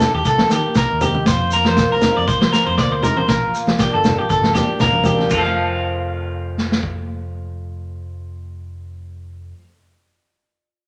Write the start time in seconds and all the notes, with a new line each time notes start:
Already playing: C2 D#3 A#3 G4 A4
0.00 D#4, snare, shekere
0.14 D#2 G4
0.25 C2 A#2 A4, kick, shekere
0.38 snare, high conga
0.50 D#3 G4, snare, shekere
0.75 C2 D#4 A#4, kick, snare, shekere
0.92 D#2
1.01 G4, muted steel-string acoustic guitar stroke, low conga, shekere
1.15 high conga
1.26 F2 F4 C5, kick, snare, shekere
1.51 A#3 A#4, shekere
1.65 C5, snare, high conga
1.77 C4, kick, snare, shekere
1.92 C2 A#4
2.01 A#3, snare, low conga, shekere
2.17 F2 D5
2.28 C2 C3 C5, kick, shekere
2.41 C5, snare, high conga
2.53 C4 A#4, snare, shekere
2.67 F2 C5
2.78 D2 A#3 D5, kick, snare, shekere
2.92 C5
3.03 A#4, muted steel-string acoustic guitar stroke, low conga, shekere
3.17 C5, high conga
3.28 A#1 A#2 F4 A#4, kick, snare, shekere
3.55 A#3, shekere
3.67 snare, high conga
3.78 G4, kick, snare, shekere
3.83 D4
3.94 G1 A4
4.04 A#3, snare, low conga, shekere
4.18 A#1 G4
4.30 G1 F2 A4, kick, shekere
4.43 snare, high conga
4.55 A#2 D4 G4, snare, low conga, shekere
4.80 G1 A#3 A#4, kick, snare, low conga, shekere
4.92 C2, high conga
5.04 G4, high conga, low conga, shekere
5.08 D4
5.19 snare, high conga
5.30 F1 F2 F4, kick, crash, high conga, shekere
5.35 F3 A4
5.39 A3 C5 F5
5.47 C4
5.53 A4
6.58 snare
6.72 snare
6.83 kick